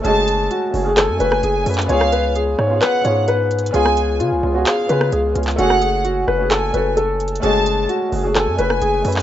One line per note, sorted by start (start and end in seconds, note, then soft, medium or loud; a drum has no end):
0.00 0.02 A3 loud
0.00 0.57 A3 medium
0.00 0.04 C#4 medium
0.00 0.58 C#4 loud
0.00 0.06 F#4 medium
0.00 0.77 G#4 loud
0.00 1.92 A4 medium
0.04 0.49 F#1 loud
0.04 0.60 G#3 loud
0.04 0.59 F#4 medium
0.04 0.48 G#4 loud
0.04 0.48 A5 loud
0.04 closed hi-hat medium
0.28 closed hi-hat medium
0.51 0.83 F#4 medium
0.51 closed hi-hat medium
0.71 1.10 F#1 loud
0.71 0.81 A3 medium
0.71 0.82 C#4 medium
0.71 0.83 F#4 medium
0.71 open hi-hat medium
0.77 0.84 G#4 medium
0.83 1.11 A3 medium
0.83 1.12 C#4 medium
0.83 1.13 F#4 medium
0.83 0.95 G#4 medium
0.88 1.14 G#4 medium
0.97 1.16 A4 medium
0.97 1.85 G#5 medium
0.97 clap loud
0.97 closed hi-hat medium
1.09 1.20 F#2 medium
1.17 1.42 F#1 loud
1.17 1.54 A3 medium
1.17 1.55 C#4 medium
1.17 1.56 F#4 medium
1.17 1.39 B4 medium
1.17 closed hi-hat medium
1.23 1.57 B4 medium
1.32 cross-stick loud
1.43 1.65 F#1 loud
1.43 1.62 G#4 medium
1.43 closed hi-hat medium
1.64 1.88 F#2 loud
1.64 1.83 A3 medium
1.64 1.84 C#4 medium
1.64 1.85 F#4 medium
1.64 closed hi-hat medium
1.64 open hi-hat medium
1.69 1.86 B4 medium
1.74 clap medium
1.74 closed hi-hat medium
1.82 closed hi-hat medium
1.86 2.56 C#2 loud
1.86 2.50 B3 loud
1.86 2.51 C#4 loud
1.86 2.52 F4 medium
1.86 2.08 C#5 medium
1.86 2.33 F5 loud
1.86 closed hi-hat medium
1.92 2.53 G#4 loud
2.01 cross-stick loud
2.12 2.31 B4 medium
2.12 closed hi-hat medium
2.35 2.54 G#4 medium
2.35 closed hi-hat medium
2.59 2.81 G#2 loud
2.59 2.78 C#5 medium
2.59 cross-stick medium
2.67 2.95 B3 medium
2.67 2.96 C#4 medium
2.67 2.97 F4 medium
2.73 2.98 G#4 medium
2.81 3.00 B4 medium
2.81 3.25 F#5 medium
2.81 clap loud
2.81 closed hi-hat medium
3.02 3.71 G#2 loud
3.02 3.57 B3 medium
3.02 3.58 C#4 medium
3.02 3.59 F4 medium
3.02 3.24 C#5 medium
3.02 closed hi-hat medium
3.08 3.60 G#4 medium
3.28 3.71 B4 medium
3.28 closed hi-hat medium
3.51 closed hi-hat medium
3.59 closed hi-hat medium
3.66 closed hi-hat medium
3.71 4.22 C#2 loud
3.71 4.26 B3 loud
3.71 4.27 C#4 loud
3.71 4.28 F4 loud
3.71 4.17 G#4 loud
3.71 4.17 G#5 loud
3.71 closed hi-hat medium
3.77 4.29 G#4 loud
3.86 cross-stick loud
3.97 closed hi-hat medium
4.20 4.33 C#3 loud
4.20 4.52 F4 medium
4.20 closed hi-hat medium
4.32 4.43 C#2 loud
4.41 4.65 C#2 loud
4.41 4.50 B3 medium
4.41 4.52 C#4 medium
4.41 4.53 F4 medium
4.46 4.54 G#4 medium
4.52 4.80 B3 medium
4.52 4.81 C#4 medium
4.52 4.82 F4 medium
4.52 4.64 F#4 medium
4.58 4.83 G#4 medium
4.66 4.85 G#4 medium
4.66 5.10 F5 medium
4.66 clap loud
4.66 closed hi-hat medium
4.87 5.11 C#3 loud
4.87 5.24 B3 medium
4.87 5.25 C#4 medium
4.87 5.26 F4 medium
4.87 5.08 B4 medium
4.87 closed hi-hat medium
4.92 5.27 G#4 medium
5.01 cross-stick loud
5.12 5.35 C#2 loud
5.12 5.31 G#4 medium
5.12 closed hi-hat medium
5.33 5.58 C#2 loud
5.33 5.52 B3 medium
5.33 5.53 C#4 medium
5.33 5.54 F4 medium
5.33 closed hi-hat medium
5.38 5.55 G#4 medium
5.43 clap medium
5.43 closed hi-hat medium
5.51 closed hi-hat soft
5.56 6.25 F#1 loud
5.56 6.20 A3 loud
5.56 6.21 C#4 medium
5.56 5.77 F#4 medium
5.56 6.22 F#4 medium
5.56 6.02 F#5 loud
5.56 closed hi-hat medium
5.62 6.23 G#4 loud
5.70 cross-stick loud
5.81 6.00 G#4 medium
5.81 closed hi-hat medium
6.04 6.23 F#4 medium
6.04 closed hi-hat medium
6.28 6.72 F#1 loud
6.28 6.47 B4 medium
6.28 cross-stick medium
6.37 6.65 A3 medium
6.37 6.66 C#4 medium
6.37 6.67 F#4 medium
6.42 6.68 G#4 medium
6.51 6.70 A4 medium
6.51 6.94 G#5 medium
6.51 clap loud
6.51 closed hi-hat medium
6.71 7.40 F#1 loud
6.71 7.26 A3 medium
6.71 7.27 C#4 medium
6.71 7.28 F#4 medium
6.71 6.93 B4 medium
6.71 closed hi-hat medium
6.77 7.29 A4 medium
6.97 7.40 A4 medium
6.97 closed hi-hat medium
7.20 closed hi-hat medium
7.28 closed hi-hat medium
7.36 closed hi-hat medium
7.40 7.88 F#1 loud
7.40 7.95 A3 medium
7.40 7.96 C#4 loud
7.40 7.97 F#4 loud
7.40 7.87 G#4 loud
7.40 7.86 A5 loud
7.40 closed hi-hat medium
7.46 7.98 G#3 loud
7.66 closed hi-hat medium
7.89 8.22 F#4 medium
7.89 closed hi-hat medium
8.09 8.49 F#1 loud
8.09 8.20 A3 medium
8.09 8.21 C#4 medium
8.09 8.22 F#4 medium
8.09 open hi-hat medium
8.15 8.23 G#4 medium
8.21 8.49 A3 medium
8.21 8.50 C#4 medium
8.21 8.51 F#4 medium
8.21 8.33 G#4 medium
8.27 8.52 G#4 medium
8.35 8.54 A4 medium
8.35 9.22 G#5 medium
8.35 clap loud
8.35 closed hi-hat medium
8.47 8.58 F#2 loud
8.55 8.81 F#1 loud
8.55 8.93 A3 medium
8.55 8.94 C#4 medium
8.55 8.95 F#4 medium
8.55 8.77 B4 medium
8.55 closed hi-hat medium
8.61 8.96 B4 medium
8.70 cross-stick loud
8.82 9.04 F#1 loud
8.82 9.01 G#4 medium
8.82 closed hi-hat medium
9.02 9.22 F#2 loud
9.02 9.21 A3 medium
9.02 9.22 C#4 medium
9.02 9.22 F#4 medium
9.02 closed hi-hat medium
9.02 open hi-hat medium
9.08 9.22 B4 medium
9.12 clap medium
9.12 closed hi-hat medium